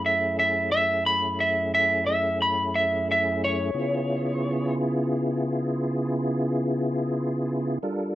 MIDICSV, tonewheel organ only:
0, 0, Header, 1, 2, 480
1, 0, Start_track
1, 0, Tempo, 680272
1, 2640, Time_signature, 12, 3, 24, 8
1, 5751, End_track
2, 0, Start_track
2, 0, Title_t, "Tonewheel organ"
2, 0, Program_c, 0, 16
2, 0, Note_on_c, 0, 42, 57
2, 0, Note_on_c, 0, 57, 58
2, 0, Note_on_c, 0, 61, 60
2, 0, Note_on_c, 0, 64, 64
2, 0, Note_on_c, 0, 68, 60
2, 2615, Note_off_c, 0, 42, 0
2, 2615, Note_off_c, 0, 61, 0
2, 2615, Note_off_c, 0, 64, 0
2, 2615, Note_off_c, 0, 68, 0
2, 2616, Note_off_c, 0, 57, 0
2, 2639, Note_on_c, 0, 68, 60
2, 2640, Note_on_c, 0, 49, 56
2, 2641, Note_on_c, 0, 64, 60
2, 2644, Note_on_c, 0, 59, 53
2, 2645, Note_on_c, 0, 65, 61
2, 5491, Note_off_c, 0, 68, 0
2, 5492, Note_off_c, 0, 49, 0
2, 5492, Note_off_c, 0, 64, 0
2, 5494, Note_off_c, 0, 59, 0
2, 5495, Note_off_c, 0, 65, 0
2, 5522, Note_on_c, 0, 69, 56
2, 5525, Note_on_c, 0, 55, 56
2, 5525, Note_on_c, 0, 70, 55
2, 5526, Note_on_c, 0, 62, 56
2, 5527, Note_on_c, 0, 65, 52
2, 5751, Note_off_c, 0, 55, 0
2, 5751, Note_off_c, 0, 62, 0
2, 5751, Note_off_c, 0, 65, 0
2, 5751, Note_off_c, 0, 69, 0
2, 5751, Note_off_c, 0, 70, 0
2, 5751, End_track
0, 0, End_of_file